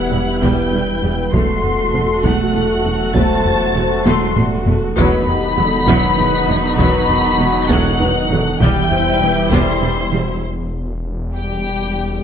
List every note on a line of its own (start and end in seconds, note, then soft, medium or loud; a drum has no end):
0.00 1.29 E1 medium
0.00 1.29 G3 medium
0.00 1.30 G3 medium
0.00 1.29 B3 medium
0.00 1.29 E4 medium
0.00 0.38 G4 medium
0.00 1.29 B4 medium
0.00 0.40 F#5 medium
0.00 0.40 F#6 loud
0.12 0.21 E1 medium
0.12 0.20 E2 soft
0.12 0.20 G3 medium
0.12 0.30 B3 medium
0.42 0.51 E1 medium
0.42 0.50 E2 medium
0.42 0.60 E3 medium
0.42 0.71 G3 medium
0.42 1.31 B4 medium
0.42 1.31 G5 medium
0.42 1.33 G6 loud
0.42 taiko medium
0.72 0.81 E1 medium
0.72 0.80 E2 medium
0.72 0.91 G3 medium
0.72 0.81 G3 medium
1.03 1.12 E1 medium
1.03 1.11 E2 medium
1.03 1.11 G3 medium
1.03 1.21 G3 medium
1.33 4.93 E1 medium
1.33 1.42 E1 medium
1.33 1.41 E2 medium
1.33 1.52 F#3 loud
1.33 4.80 F#3 medium
1.33 4.97 A3 medium
1.33 4.80 A3 medium
1.33 1.62 A3 medium
1.33 4.93 F#4 medium
1.33 3.15 A4 loud
1.33 4.97 A4 medium
1.33 4.96 F#5 medium
1.33 2.22 C6 medium
1.33 2.22 C7 loud
1.33 taiko medium
1.64 taiko low medium
1.94 2.02 E1 medium
1.94 2.02 E2 medium
1.94 2.02 A3 medium
1.94 2.12 C4 medium
2.24 2.32 E1 medium
2.24 2.32 E2 medium
2.24 2.43 F#3 medium
2.24 2.53 A3 medium
2.24 3.15 F#5 medium
2.24 3.14 F#6 loud
2.24 taiko medium
2.54 2.63 E1 medium
2.54 2.63 E2 medium
2.54 2.73 A3 medium
2.54 2.63 A3 medium
2.84 2.93 E1 medium
2.84 2.92 E2 medium
2.84 3.03 A3 medium
2.84 2.93 A3 medium
3.14 3.24 E1 loud
3.14 3.23 E2 medium
3.14 3.33 F#3 loud
3.14 3.44 A3 medium
3.14 4.04 C5 loud
3.14 4.05 A5 loud
3.14 4.06 A6 loud
3.14 taiko medium
3.45 taiko low medium
3.76 3.84 E1 medium
3.76 3.84 E2 medium
3.76 3.85 A3 medium
3.76 3.94 C4 medium
4.06 4.14 E1 loud
4.06 4.14 E2 medium
4.06 4.24 F#3 medium
4.06 4.35 A3 loud
4.06 4.37 A4 medium
4.06 4.36 C6 medium
4.06 4.36 C7 loud
4.06 taiko high medium
4.36 4.45 E1 medium
4.36 4.44 E2 medium
4.36 4.66 G3 medium
4.36 4.55 A3 medium
4.36 4.45 A3 medium
4.36 taiko low-mid medium
4.66 4.75 E1 medium
4.66 4.75 E2 medium
4.66 4.75 A3 medium
4.66 4.85 A3 medium
4.66 4.96 A4 medium
4.66 taiko low medium
4.97 8.57 E1 medium
4.97 5.06 E1 loud
4.97 5.05 E2 loud
4.97 8.57 D#3 loud
4.97 8.57 F#3 loud
4.97 5.25 F#3 loud
4.97 5.15 B3 loud
4.97 8.61 B3 medium
4.97 8.57 D#4 medium
4.97 5.27 B4 loud
4.97 8.61 D#5 medium
4.97 8.57 F#5 loud
4.97 6.75 B5 loud
4.97 6.75 B6 loud
4.97 taiko medium
5.27 5.58 G4 medium
5.27 taiko low medium
5.57 5.66 E1 medium
5.57 5.65 E2 medium
5.57 5.66 F#3 medium
5.57 5.76 F#4 medium
5.57 5.88 A4 medium
5.87 5.96 E1 loud
5.87 5.96 E2 loud
5.87 6.16 F#3 loud
5.87 6.06 B3 loud
5.87 6.62 B4 loud
5.87 taiko medium
6.18 6.26 E1 medium
6.18 6.27 E2 medium
6.18 6.27 F#3 medium
6.18 6.36 D#4 medium
6.48 6.57 E1 medium
6.48 6.57 E2 medium
6.48 6.57 F#3 medium
6.48 6.67 D#4 medium
6.78 6.87 E1 loud
6.78 6.87 E2 loud
6.78 7.07 F#3 loud
6.78 6.97 B3 loud
6.78 7.09 B4 loud
6.78 7.67 B5 loud
6.78 7.68 B6 loud
6.78 taiko medium
7.09 7.39 F#4 medium
7.09 taiko low medium
7.39 7.48 E1 medium
7.39 7.47 E2 medium
7.39 7.48 F#3 medium
7.39 7.58 F#4 medium
7.39 7.70 F#4 loud
7.69 7.78 E1 loud
7.69 7.78 E2 loud
7.69 7.98 F#3 medium
7.69 7.88 B3 loud
7.69 8.00 A4 loud
7.69 8.60 F#5 loud
7.69 8.61 F#6 loud
7.69 taiko medium
8.00 8.09 E1 medium
8.00 8.08 E2 medium
8.00 8.09 F#3 medium
8.00 8.18 D#4 medium
8.00 8.30 B4 loud
8.30 8.38 E1 medium
8.30 8.38 E2 medium
8.30 8.39 F#3 medium
8.30 8.48 D#4 medium
8.30 8.61 A4 medium
8.60 12.20 E1 medium
8.60 8.68 E1 loud
8.60 8.69 E2 loud
8.60 8.79 C3 loud
8.60 10.38 E3 loud
8.60 10.43 E3 loud
8.60 10.38 G3 loud
8.60 10.43 G3 medium
8.60 8.89 G3 loud
8.60 10.42 E4 loud
8.60 10.39 E4 medium
8.60 8.90 G4 loud
8.60 10.42 E5 loud
8.60 9.50 G5 loud
8.60 9.50 G6 loud
8.60 taiko loud
8.91 9.21 C5 loud
8.91 taiko low medium
9.21 9.29 E1 medium
9.21 9.30 E2 medium
9.21 9.39 G3 medium
9.21 9.30 G3 medium
9.21 9.51 B4 medium
9.52 9.60 E1 medium
9.52 9.60 E2 loud
9.52 9.70 C3 loud
9.52 9.80 G3 medium
9.52 9.82 A4 medium
9.52 10.42 C5 loud
9.52 10.43 C6 loud
9.52 taiko medium
9.81 9.90 E1 medium
9.81 9.90 E2 medium
9.81 10.00 E3 medium
9.81 9.90 G3 medium
9.81 10.12 G4 medium
10.12 10.20 E1 medium
10.12 10.20 E2 medium
10.12 10.30 E3 medium
10.12 10.21 G3 medium
10.12 10.43 F#4 medium
11.33 12.21 G3 medium
11.33 12.20 G4 medium
11.33 12.21 G5 loud